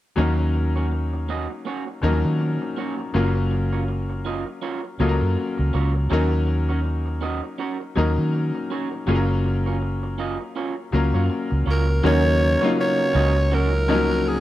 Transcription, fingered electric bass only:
0, 0, Header, 1, 2, 480
1, 0, Start_track
1, 0, Tempo, 741656
1, 111, Time_signature, 4, 2, 24, 8
1, 9320, End_track
2, 0, Start_track
2, 0, Title_t, "Fingered electric bass"
2, 0, Program_c, 0, 33
2, 113, Note_on_c, 0, 39, 94
2, 946, Note_off_c, 0, 39, 0
2, 1313, Note_on_c, 0, 39, 75
2, 1435, Note_off_c, 0, 39, 0
2, 1455, Note_on_c, 0, 51, 82
2, 1664, Note_off_c, 0, 51, 0
2, 2036, Note_on_c, 0, 30, 86
2, 2868, Note_off_c, 0, 30, 0
2, 3234, Note_on_c, 0, 37, 73
2, 3356, Note_off_c, 0, 37, 0
2, 3375, Note_on_c, 0, 42, 91
2, 3463, Note_off_c, 0, 42, 0
2, 3619, Note_on_c, 0, 37, 73
2, 3705, Note_off_c, 0, 37, 0
2, 3718, Note_on_c, 0, 37, 87
2, 3928, Note_off_c, 0, 37, 0
2, 3957, Note_on_c, 0, 39, 100
2, 4789, Note_off_c, 0, 39, 0
2, 5159, Note_on_c, 0, 39, 76
2, 5280, Note_off_c, 0, 39, 0
2, 5294, Note_on_c, 0, 51, 87
2, 5505, Note_off_c, 0, 51, 0
2, 5875, Note_on_c, 0, 30, 85
2, 6708, Note_off_c, 0, 30, 0
2, 7074, Note_on_c, 0, 37, 77
2, 7196, Note_off_c, 0, 37, 0
2, 7211, Note_on_c, 0, 42, 85
2, 7300, Note_off_c, 0, 42, 0
2, 7454, Note_on_c, 0, 37, 69
2, 7542, Note_off_c, 0, 37, 0
2, 7550, Note_on_c, 0, 37, 82
2, 7762, Note_off_c, 0, 37, 0
2, 7791, Note_on_c, 0, 39, 105
2, 8124, Note_off_c, 0, 39, 0
2, 8511, Note_on_c, 0, 37, 93
2, 9320, Note_off_c, 0, 37, 0
2, 9320, End_track
0, 0, End_of_file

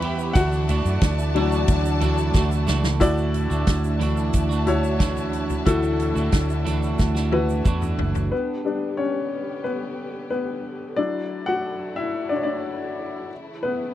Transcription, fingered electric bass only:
0, 0, Header, 1, 2, 480
1, 0, Start_track
1, 0, Key_signature, 2, "major"
1, 0, Tempo, 664452
1, 256, Time_signature, 4, 2, 24, 8
1, 10070, End_track
2, 0, Start_track
2, 0, Title_t, "Fingered electric bass"
2, 0, Program_c, 0, 33
2, 0, Note_on_c, 0, 40, 89
2, 227, Note_off_c, 0, 40, 0
2, 257, Note_on_c, 0, 38, 104
2, 591, Note_off_c, 0, 38, 0
2, 616, Note_on_c, 0, 42, 91
2, 727, Note_off_c, 0, 42, 0
2, 735, Note_on_c, 0, 38, 100
2, 1185, Note_off_c, 0, 38, 0
2, 1216, Note_on_c, 0, 38, 109
2, 1665, Note_off_c, 0, 38, 0
2, 1694, Note_on_c, 0, 38, 96
2, 1916, Note_off_c, 0, 38, 0
2, 1936, Note_on_c, 0, 37, 88
2, 2157, Note_off_c, 0, 37, 0
2, 2173, Note_on_c, 0, 38, 96
2, 2507, Note_off_c, 0, 38, 0
2, 2534, Note_on_c, 0, 38, 85
2, 2644, Note_off_c, 0, 38, 0
2, 2654, Note_on_c, 0, 38, 91
2, 3103, Note_off_c, 0, 38, 0
2, 3134, Note_on_c, 0, 38, 88
2, 4063, Note_off_c, 0, 38, 0
2, 4093, Note_on_c, 0, 38, 92
2, 4426, Note_off_c, 0, 38, 0
2, 4450, Note_on_c, 0, 38, 73
2, 4562, Note_off_c, 0, 38, 0
2, 4572, Note_on_c, 0, 38, 90
2, 5022, Note_off_c, 0, 38, 0
2, 5053, Note_on_c, 0, 38, 91
2, 5503, Note_off_c, 0, 38, 0
2, 5530, Note_on_c, 0, 40, 67
2, 5753, Note_off_c, 0, 40, 0
2, 5769, Note_on_c, 0, 30, 84
2, 5993, Note_off_c, 0, 30, 0
2, 10070, End_track
0, 0, End_of_file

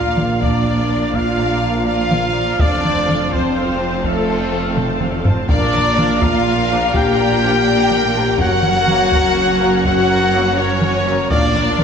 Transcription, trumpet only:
0, 0, Header, 1, 2, 480
1, 0, Start_track
1, 0, Key_signature, -2, "major"
1, 0, Tempo, 483871
1, 2579, Time_signature, 12, 3, 24, 8
1, 11743, End_track
2, 0, Start_track
2, 0, Title_t, "Trumpet"
2, 0, Program_c, 0, 56
2, 0, Note_on_c, 0, 77, 103
2, 380, Note_off_c, 0, 77, 0
2, 420, Note_on_c, 0, 74, 91
2, 1142, Note_on_c, 0, 77, 98
2, 1157, Note_off_c, 0, 74, 0
2, 1855, Note_off_c, 0, 77, 0
2, 1861, Note_on_c, 0, 77, 107
2, 2585, Note_on_c, 0, 74, 117
2, 2600, Note_off_c, 0, 77, 0
2, 3303, Note_on_c, 0, 72, 89
2, 3318, Note_off_c, 0, 74, 0
2, 4028, Note_on_c, 0, 69, 101
2, 4043, Note_off_c, 0, 72, 0
2, 5223, Note_off_c, 0, 69, 0
2, 5461, Note_on_c, 0, 74, 118
2, 6179, Note_on_c, 0, 77, 108
2, 6194, Note_off_c, 0, 74, 0
2, 6910, Note_on_c, 0, 79, 127
2, 6925, Note_off_c, 0, 77, 0
2, 8350, Note_on_c, 0, 78, 127
2, 8365, Note_off_c, 0, 79, 0
2, 9775, Note_off_c, 0, 78, 0
2, 9781, Note_on_c, 0, 78, 121
2, 10503, Note_on_c, 0, 73, 111
2, 10518, Note_off_c, 0, 78, 0
2, 11210, Note_off_c, 0, 73, 0
2, 11216, Note_on_c, 0, 74, 118
2, 11675, Note_off_c, 0, 74, 0
2, 11743, End_track
0, 0, End_of_file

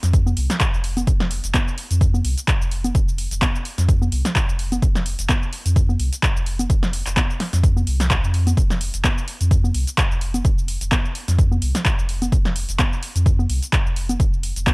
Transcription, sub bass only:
0, 0, Header, 1, 2, 480
1, 0, Start_track
1, 0, Tempo, 468750
1, 1099, Time_signature, 4, 2, 24, 8
1, 15093, End_track
2, 0, Start_track
2, 0, Title_t, "Sub bass"
2, 0, Program_c, 0, 38
2, 32, Note_on_c, 0, 41, 85
2, 343, Note_off_c, 0, 41, 0
2, 380, Note_on_c, 0, 36, 96
2, 484, Note_off_c, 0, 36, 0
2, 753, Note_on_c, 0, 29, 86
2, 1063, Note_off_c, 0, 29, 0
2, 1099, Note_on_c, 0, 29, 102
2, 1427, Note_off_c, 0, 29, 0
2, 1472, Note_on_c, 0, 29, 86
2, 1556, Note_off_c, 0, 29, 0
2, 1952, Note_on_c, 0, 41, 83
2, 2263, Note_off_c, 0, 41, 0
2, 2299, Note_on_c, 0, 36, 97
2, 2403, Note_off_c, 0, 36, 0
2, 2672, Note_on_c, 0, 29, 84
2, 2982, Note_off_c, 0, 29, 0
2, 3019, Note_on_c, 0, 29, 105
2, 3347, Note_off_c, 0, 29, 0
2, 3391, Note_on_c, 0, 29, 88
2, 3476, Note_off_c, 0, 29, 0
2, 3871, Note_on_c, 0, 41, 86
2, 4182, Note_off_c, 0, 41, 0
2, 4219, Note_on_c, 0, 36, 98
2, 4323, Note_off_c, 0, 36, 0
2, 4592, Note_on_c, 0, 29, 80
2, 4903, Note_off_c, 0, 29, 0
2, 4940, Note_on_c, 0, 29, 104
2, 5267, Note_off_c, 0, 29, 0
2, 5312, Note_on_c, 0, 29, 88
2, 5396, Note_off_c, 0, 29, 0
2, 5791, Note_on_c, 0, 41, 83
2, 6102, Note_off_c, 0, 41, 0
2, 6138, Note_on_c, 0, 36, 93
2, 6243, Note_off_c, 0, 36, 0
2, 6512, Note_on_c, 0, 29, 82
2, 6823, Note_off_c, 0, 29, 0
2, 6859, Note_on_c, 0, 29, 104
2, 7187, Note_off_c, 0, 29, 0
2, 7233, Note_on_c, 0, 29, 85
2, 7317, Note_off_c, 0, 29, 0
2, 7712, Note_on_c, 0, 41, 84
2, 8023, Note_off_c, 0, 41, 0
2, 8060, Note_on_c, 0, 36, 99
2, 8387, Note_off_c, 0, 36, 0
2, 8432, Note_on_c, 0, 41, 83
2, 8743, Note_off_c, 0, 41, 0
2, 8778, Note_on_c, 0, 29, 106
2, 9106, Note_off_c, 0, 29, 0
2, 9152, Note_on_c, 0, 29, 82
2, 9236, Note_off_c, 0, 29, 0
2, 9633, Note_on_c, 0, 41, 83
2, 9943, Note_off_c, 0, 41, 0
2, 9979, Note_on_c, 0, 36, 93
2, 10084, Note_off_c, 0, 36, 0
2, 10351, Note_on_c, 0, 29, 83
2, 10662, Note_off_c, 0, 29, 0
2, 10698, Note_on_c, 0, 29, 105
2, 11026, Note_off_c, 0, 29, 0
2, 11071, Note_on_c, 0, 29, 86
2, 11156, Note_off_c, 0, 29, 0
2, 11551, Note_on_c, 0, 41, 89
2, 11862, Note_off_c, 0, 41, 0
2, 11899, Note_on_c, 0, 36, 96
2, 12004, Note_off_c, 0, 36, 0
2, 12272, Note_on_c, 0, 29, 80
2, 12583, Note_off_c, 0, 29, 0
2, 12618, Note_on_c, 0, 29, 108
2, 12946, Note_off_c, 0, 29, 0
2, 12991, Note_on_c, 0, 29, 88
2, 13076, Note_off_c, 0, 29, 0
2, 13470, Note_on_c, 0, 41, 92
2, 13782, Note_off_c, 0, 41, 0
2, 13817, Note_on_c, 0, 36, 92
2, 13923, Note_off_c, 0, 36, 0
2, 14190, Note_on_c, 0, 29, 82
2, 14502, Note_off_c, 0, 29, 0
2, 14538, Note_on_c, 0, 29, 100
2, 14866, Note_off_c, 0, 29, 0
2, 14912, Note_on_c, 0, 29, 83
2, 14996, Note_off_c, 0, 29, 0
2, 15093, End_track
0, 0, End_of_file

